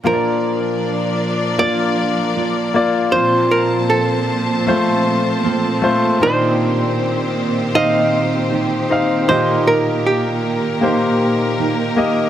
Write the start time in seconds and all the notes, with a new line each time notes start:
0.03 A#2 F3 A#3 D4 F4 A#4 C5 D5
0.08 A#4
0.13 D5
1.58 F3 A#3 D4 F4 A#4 D5
2.35 F3 A#3 D4 A#4
2.74 A#3 F4 D5
3.11 A#2 F3 A#3 C4 F4 C5 A5
3.51 A#4
3.90 A4
4.66 F3 A3 A#3 C4 F4 A4 C5
5.43 F3 A#3 C4 A4
5.82 A3 F4 C5
6.20 A#2 D#3 C4 D4 D#4 G4 C5 D5
6.25 G4
7.73 D#3 C4 D#4 G4 D#5 F5
8.50 D#3 C4 G4
8.90 C4 D#4 F5
9.27 A#2 D#3 A#3 D#4 G4 A#4 C5 D#5
9.32 G4
9.67 A#4
10.06 G4
10.81 D#3 A#3 D#4 G4 C5
11.57 D#3 A#3 D#4 G4
11.96 A#3 G4 D#5